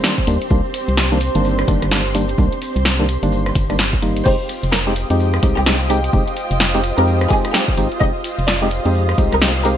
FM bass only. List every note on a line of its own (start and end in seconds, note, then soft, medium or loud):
0.27 0.38 D#2 medium
0.51 0.62 C2 loud
0.88 1.30 C2 loud
1.35 1.65 G1 medium
1.68 1.79 G1 medium
1.82 2.35 G1 medium
2.38 2.49 C2 loud
2.76 3.17 C2 loud
3.23 3.52 G1 medium
3.55 4.22 G1 loud
4.26 4.37 F1 loud
4.63 5.05 F1 loud
5.10 5.39 F2 medium
5.43 5.54 C2 medium
5.57 6.10 C2 medium
6.13 6.24 F1 loud
6.51 6.92 F1 loud
6.98 7.27 F2 medium
7.78 7.88 G#1 medium
8.01 8.12 F1 loud
8.39 8.80 F1 loud
8.86 9.15 F2 medium
9.18 9.29 C2 medium
9.32 9.77 C2 medium